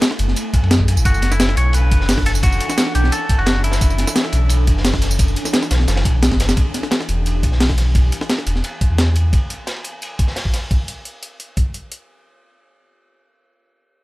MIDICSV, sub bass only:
0, 0, Header, 1, 2, 480
1, 0, Start_track
1, 0, Tempo, 344828
1, 1467, Time_signature, 4, 2, 24, 8
1, 19542, End_track
2, 0, Start_track
2, 0, Title_t, "Sub bass"
2, 0, Program_c, 0, 38
2, 267, Note_on_c, 0, 30, 96
2, 484, Note_off_c, 0, 30, 0
2, 871, Note_on_c, 0, 42, 81
2, 1350, Note_on_c, 0, 30, 93
2, 1371, Note_off_c, 0, 42, 0
2, 2167, Note_off_c, 0, 30, 0
2, 2184, Note_on_c, 0, 35, 92
2, 2666, Note_on_c, 0, 30, 86
2, 2687, Note_off_c, 0, 35, 0
2, 3608, Note_off_c, 0, 30, 0
2, 4107, Note_on_c, 0, 35, 96
2, 4324, Note_off_c, 0, 35, 0
2, 4711, Note_on_c, 0, 30, 84
2, 5651, Note_off_c, 0, 30, 0
2, 6027, Note_on_c, 0, 35, 97
2, 6506, Note_on_c, 0, 30, 87
2, 6527, Note_off_c, 0, 35, 0
2, 7448, Note_off_c, 0, 30, 0
2, 7947, Note_on_c, 0, 35, 95
2, 8164, Note_off_c, 0, 35, 0
2, 8186, Note_on_c, 0, 30, 100
2, 8425, Note_on_c, 0, 35, 107
2, 8446, Note_off_c, 0, 30, 0
2, 8771, Note_off_c, 0, 35, 0
2, 8790, Note_on_c, 0, 30, 102
2, 9128, Note_off_c, 0, 30, 0
2, 9866, Note_on_c, 0, 28, 96
2, 10346, Note_on_c, 0, 35, 83
2, 10367, Note_off_c, 0, 28, 0
2, 11288, Note_off_c, 0, 35, 0
2, 11785, Note_on_c, 0, 28, 95
2, 12003, Note_off_c, 0, 28, 0
2, 12390, Note_on_c, 0, 40, 79
2, 12967, Note_off_c, 0, 40, 0
2, 19542, End_track
0, 0, End_of_file